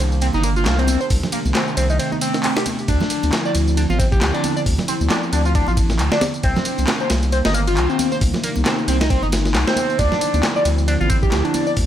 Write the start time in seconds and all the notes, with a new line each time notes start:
Already playing: C3 D#3 A#3 D4
0.00 C2, ride
0.12 tambourine
0.21 C4, ride, tambourine
0.33 G1 D#4, tambourine, high conga
0.43 A#3, ride, tambourine
0.56 F4, tambourine
0.66 C2, snare, clap, ride, tambourine
0.78 C4, ride, tambourine
0.87 A3 C4, ride, tambourine, high conga
1.01 C5, tambourine
1.10 C2, kick, open hi-hat, tambourine
1.23 snare, tambourine, low conga
1.32 A#3, ride, tambourine
1.45 C2, tambourine, high conga
1.55 C4, snare, clap, ride, tambourine
1.68 tambourine
1.77 C2 C4, ride, tambourine
1.90 D#4, tambourine
1.99 C4, ride, tambourine
2.12 D#4, tambourine, high conga
2.21 C4, ride, tambourine
2.34 C4, snare, tambourine
2.44 C4, clap, ride, tambourine
2.56 G4, snare, tambourine
2.66 ride, tambourine, high conga
2.79 tambourine
2.88 D2 D3 F3 C4 D4 E4, kick, ride, tambourine
3.00 snare, tambourine, low conga
3.10 ride, tambourine
3.23 D2, ride, tambourine, high conga
3.32 snare, clap, ride, tambourine
3.45 D5, tambourine
3.55 D2, ride, tambourine
3.68 tambourine
3.77 D4, ride, tambourine
3.90 A1 F4, tambourine, high conga
3.99 C4, kick, ride, tambourine
4.12 G4, kick, tambourine
4.21 D2, snare, clap, ride, tambourine
4.34 D4, ride, tambourine
4.44 D4, ride, tambourine, high conga
4.56 D5, tambourine
4.66 D2, kick, open hi-hat, tambourine
4.78 snare, tambourine, low conga
4.88 C4, ride, tambourine
5.01 D2, tambourine, high conga
5.10 D4, snare, clap, ride, tambourine
5.23 tambourine
5.33 D2 D4, ride, tambourine
5.45 F4, tambourine
5.55 D4, kick, ride, tambourine
5.67 A1 F4, tambourine, high conga
5.77 kick, ride, tambourine
5.90 snare, tambourine
5.99 D2, clap, ride, tambourine
6.12 D4, snare, tambourine
6.21 C3 D#3 A#3 D4, snare, ride, tambourine, high conga
6.34 tambourine
6.43 C2 C4, kick, ride, tambourine
6.56 snare, tambourine, low conga
6.65 ride, tambourine
6.78 C2, ride, tambourine, high conga
6.87 snare, clap, ride, tambourine
7.00 C5, tambourine
7.10 C2, snare, ride, tambourine
7.22 ride, tambourine
7.32 C4, ride, tambourine
7.45 G1 D#4, snare, ride, tambourine, high conga
7.54 A#3, ride, tambourine
7.67 F4, ride, tambourine
7.77 C2, clap, ride, tambourine
7.89 C4, tambourine
7.99 C4 D#4, ride, tambourine, high conga
8.12 C5, tambourine
8.21 C2, kick, open hi-hat, tambourine
8.34 snare, tambourine, low conga
8.44 A#3, ride, tambourine
8.56 C2, tambourine, high conga
8.66 C4, snare, clap, ride, tambourine
8.79 tambourine
8.88 C2 C4, ride, tambourine
9.01 D#4, snare, ride, tambourine
9.10 C4, kick, ride, tambourine
9.23 G1 D#4, tambourine, high conga
9.32 snare, ride, tambourine
9.45 snare, tambourine
9.54 C2, snare, clap, ride, tambourine
9.67 C4, snare, tambourine
9.76 ride, tambourine, high conga
9.90 tambourine
9.99 D2 D3 F3 C4 D4 E4, kick, ride, tambourine
10.12 snare, tambourine, low conga
10.21 ride, tambourine
10.34 D2, ride, tambourine, high conga
10.43 snare, clap, ride, tambourine
10.56 D5, tambourine
10.65 D2, ride, tambourine
10.78 tambourine
10.88 D4, ride, tambourine
11.00 A1 F4, tambourine, high conga
11.10 C4, kick, ride, tambourine
11.22 G4, kick, tambourine
11.32 D2, snare, clap, ride, tambourine
11.45 D4, ride, tambourine
11.54 D4, ride, tambourine, high conga
11.67 D5, tambourine
11.76 D2, kick, open hi-hat, tambourine